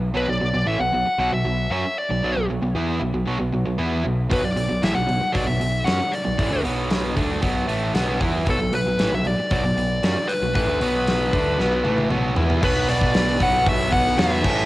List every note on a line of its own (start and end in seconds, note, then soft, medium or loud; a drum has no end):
0.00 0.13 B1 medium
0.14 0.27 B1 medium
0.14 0.27 B2 medium
0.14 0.27 F#3 loud
0.14 0.29 B4 medium
0.28 0.40 B1 medium
0.28 0.39 B2 medium
0.28 0.39 F#3 medium
0.28 0.69 D5 loud
0.41 0.53 B1 medium
0.41 0.52 B2 medium
0.41 0.52 F#3 medium
0.53 0.66 B1 medium
0.53 0.66 B2 medium
0.53 0.66 F#3 medium
0.66 0.79 A1 medium
0.66 0.79 A2 medium
0.66 0.79 E3 medium
0.66 0.80 E5 medium
0.79 0.92 B1 medium
0.79 0.91 B2 medium
0.79 0.92 F#3 medium
0.79 1.17 F#5 loud
0.92 1.05 B1 medium
0.92 1.04 B2 medium
0.92 1.06 F#3 medium
1.06 muted distorted electric guitar stroke medium
1.06 muted picked electric bass stroke soft
1.06 muted overdriven electric guitar stroke medium
1.18 1.31 B1 medium
1.18 1.30 B2 medium
1.18 1.31 F#3 medium
1.18 1.33 F#5 loud
1.32 1.44 B1 medium
1.32 1.43 B2 medium
1.32 1.44 F#3 medium
1.32 1.70 E5 medium
1.44 1.69 B1 medium
1.44 1.66 B2 medium
1.44 1.66 F#3 medium
1.71 1.83 F#2 medium
1.71 1.83 F#3 medium
1.71 1.83 C#4 medium
1.71 1.95 E5 medium
1.98 2.46 D5 medium
2.09 2.22 B1 medium
2.09 2.21 B2 medium
2.09 2.21 F#3 medium
2.22 2.35 B1 medium
2.22 2.34 B2 medium
2.22 2.34 F#3 medium
2.35 2.48 B1 medium
2.35 2.46 B2 medium
2.35 2.47 F#3 medium
2.48 2.61 B1 medium
2.48 2.61 B2 medium
2.48 2.61 F#3 medium
2.61 2.74 B1 medium
2.61 2.74 B2 medium
2.61 2.75 F#3 medium
2.74 2.99 E2 medium
2.74 3.00 E3 medium
2.74 3.00 B3 medium
2.74 3.01 E4 medium
3.00 3.13 B1 medium
3.00 3.12 B2 medium
3.00 3.13 F#3 medium
3.13 3.26 B1 medium
3.13 3.24 B2 medium
3.13 3.25 F#3 medium
3.26 3.39 B1 medium
3.26 3.38 B2 medium
3.26 3.38 F#3 loud
3.39 3.52 B1 medium
3.39 3.52 B2 medium
3.39 3.52 F#3 medium
3.53 3.65 B1 medium
3.53 3.65 B2 medium
3.53 3.65 F#3 medium
3.66 3.78 B1 medium
3.66 3.78 B2 medium
3.66 3.79 F#3 medium
3.78 4.03 E2 medium
3.78 4.04 E3 medium
3.78 4.04 B3 medium
3.78 4.04 E4 medium
4.05 4.29 B1 medium
4.05 4.26 B2 medium
4.05 4.26 F#3 medium
4.30 4.44 B1 medium
4.30 4.43 B2 medium
4.30 4.43 F#3 medium
4.30 4.45 B4 medium
4.30 kick loud
4.30 open hi-hat medium
4.44 4.56 B1 medium
4.44 4.57 B2 medium
4.44 4.57 F#3 medium
4.44 4.84 D5 medium
4.57 4.69 B1 medium
4.57 4.70 B2 medium
4.57 4.70 F#3 medium
4.57 open hi-hat medium
4.71 4.83 B1 medium
4.71 4.83 B2 medium
4.71 4.84 F#3 medium
4.83 4.95 A1 medium
4.83 4.96 A2 medium
4.83 4.96 E3 medium
4.83 4.97 E5 medium
4.83 snare loud
4.83 open hi-hat medium
4.95 5.09 B1 medium
4.95 5.09 B2 medium
4.95 5.10 F#3 medium
4.95 5.36 F#5 loud
5.07 5.22 B1 medium
5.07 5.22 B2 medium
5.07 5.21 F#3 medium
5.07 open hi-hat soft
5.12 5.23 F#3 medium
5.21 muted overdriven electric guitar stroke medium
5.21 muted distorted electric guitar stroke medium
5.21 muted picked electric bass stroke soft
5.32 5.47 B1 medium
5.32 5.46 B2 medium
5.32 5.47 F#3 loud
5.32 5.47 D5 medium
5.32 kick medium
5.32 open hi-hat medium
5.47 5.61 B1 medium
5.47 5.60 B2 medium
5.47 5.60 F#3 medium
5.47 5.88 E5 medium
5.61 5.86 B1 medium
5.61 5.82 B2 medium
5.61 5.82 F#3 medium
5.61 open hi-hat medium
5.84 6.00 F#2 medium
5.84 5.99 F#3 medium
5.84 5.99 C#4 loud
5.84 6.13 F#5 medium
5.84 snare loud
5.84 open hi-hat medium
6.12 6.61 D5 medium
6.12 open hi-hat medium
6.26 6.38 B1 medium
6.26 6.38 B2 medium
6.26 6.38 F#3 medium
6.38 6.51 A1 medium
6.38 6.51 A2 medium
6.38 6.51 E3 loud
6.38 kick loud
6.38 open hi-hat medium
6.52 6.64 D2 medium
6.52 6.64 D3 medium
6.52 6.64 A3 loud
6.65 7.14 B1 medium
6.65 7.16 B2 medium
6.65 7.17 F#3 loud
6.65 7.17 B3 medium
6.65 open hi-hat medium
6.90 snare loud
6.90 open hi-hat medium
7.17 7.41 D2 medium
7.17 7.42 D3 medium
7.17 7.43 A3 medium
7.17 7.43 D4 loud
7.17 kick medium
7.17 open hi-hat medium
7.42 7.67 B1 medium
7.42 7.68 B2 medium
7.42 7.68 F#3 loud
7.42 7.69 B3 medium
7.42 kick medium
7.42 open hi-hat medium
7.68 7.93 A1 medium
7.68 7.94 A2 medium
7.68 7.95 E3 medium
7.68 7.95 A3 loud
7.68 open hi-hat medium
7.94 8.19 B1 loud
7.94 8.20 B2 medium
7.94 8.21 F#3 medium
7.94 8.20 B3 loud
7.94 snare medium
7.94 open hi-hat medium
8.21 8.45 E2 medium
8.21 8.46 E3 medium
8.21 8.46 B3 medium
8.21 8.47 E4 loud
8.21 kick loud
8.21 open hi-hat medium
8.46 8.57 B1 medium
8.46 8.58 B2 medium
8.46 8.58 F#3 loud
8.46 8.74 A4 medium
8.46 kick loud
8.46 open hi-hat medium
8.58 8.71 B1 medium
8.58 8.72 B2 medium
8.58 8.72 F#3 medium
8.71 8.84 B1 medium
8.71 8.85 B2 medium
8.71 8.86 F#3 medium
8.71 9.14 B4 medium
8.71 open hi-hat medium
8.85 8.97 B1 medium
8.85 8.97 B2 medium
8.85 8.98 F#3 medium
8.98 9.11 A1 medium
8.98 9.11 A2 medium
8.98 9.11 E3 medium
8.98 snare loud
8.98 open hi-hat medium
9.12 9.23 B1 medium
9.12 9.24 B2 medium
9.12 9.25 F#3 medium
9.12 9.27 E5 loud
9.24 9.37 B1 medium
9.24 9.37 B2 medium
9.24 9.39 F#3 medium
9.24 9.52 D5 medium
9.24 open hi-hat soft
9.38 muted distorted electric guitar stroke medium
9.38 muted overdriven electric guitar stroke medium
9.51 9.63 B1 medium
9.51 9.62 B2 medium
9.51 9.62 F#3 medium
9.51 10.32 D5 loud
9.51 kick loud
9.51 open hi-hat medium
9.63 9.75 B1 medium
9.63 9.76 B2 medium
9.63 9.76 F#3 medium
9.76 10.01 B1 medium
9.76 9.98 B2 medium
9.76 9.98 F#3 medium
9.76 open hi-hat soft
10.03 10.15 F#2 medium
10.03 10.15 F#3 medium
10.03 10.16 C#4 medium
10.03 snare loud
10.03 open hi-hat medium
10.28 10.54 B4 medium
10.28 open hi-hat medium
10.41 10.54 B1 medium
10.41 10.54 B2 medium
10.41 10.55 F#3 medium
10.55 10.66 A1 medium
10.55 10.67 A2 medium
10.55 10.68 E3 medium
10.55 12.07 B4 medium
10.55 kick loud
10.55 open hi-hat medium
10.67 10.80 D2 medium
10.67 10.80 D3 medium
10.67 10.81 A3 loud
10.80 11.29 B1 medium
10.80 11.32 B2 medium
10.80 11.32 F#3 loud
10.80 11.33 B3 loud
10.80 open hi-hat medium
11.07 snare medium
11.07 open hi-hat medium
11.32 11.58 D2 medium
11.32 11.57 D3 medium
11.32 11.58 A3 medium
11.32 11.58 D4 medium
11.32 kick medium
11.32 open hi-hat medium
11.58 11.83 B1 medium
11.58 11.84 B2 medium
11.58 11.84 F#3 medium
11.58 11.85 B3 medium
11.58 snare medium
11.84 12.09 A1 medium
11.84 12.10 A2 medium
11.84 12.10 E3 medium
11.84 12.10 A3 medium
11.84 high tom medium
11.98 high tom medium
12.10 12.35 B1 medium
12.10 12.36 B2 medium
12.10 12.36 F#3 loud
12.10 12.37 B3 loud
12.10 mid tom medium
12.36 12.61 E2 medium
12.36 12.61 E3 medium
12.36 12.62 B3 medium
12.36 12.63 E4 loud
12.36 floor tom medium
12.50 floor tom medium
12.61 12.86 B1 loud
12.61 13.90 B2 medium
12.61 13.91 F#3 medium
12.61 14.43 B3 medium
12.61 13.90 B3 medium
12.61 14.43 F#4 medium
12.61 14.43 B4 medium
12.61 12.89 B4 medium
12.61 kick loud
12.61 crash loud
12.88 13.13 B1 medium
12.88 13.43 D5 medium
12.88 open hi-hat medium
13.01 kick medium
13.14 13.39 B1 loud
13.14 snare loud
13.14 open hi-hat medium
13.39 13.64 B1 medium
13.39 14.16 B2 medium
13.39 14.17 F#3 medium
13.39 14.16 B3 medium
13.39 13.68 F#5 loud
13.39 kick medium
13.39 open hi-hat medium
13.66 13.90 B1 medium
13.66 13.92 E5 loud
13.66 kick loud
13.66 open hi-hat medium
13.92 14.16 B1 medium
13.92 14.16 B2 medium
13.92 14.17 F#3 medium
13.92 14.17 B3 medium
13.92 14.19 F#5 medium
13.92 kick medium
13.92 open hi-hat medium
14.07 snare soft
14.18 14.42 E2 loud
14.18 14.42 B2 medium
14.18 14.43 F#3 medium
14.18 14.44 B3 medium
14.18 14.65 E5 loud
14.18 snare loud
14.18 open hi-hat medium
14.43 14.65 A1 medium
14.43 14.65 A2 loud
14.43 14.65 E3 loud
14.43 14.65 A3 medium
14.43 14.65 E4 medium
14.43 14.65 C5 medium
14.43 kick loud
14.43 crash loud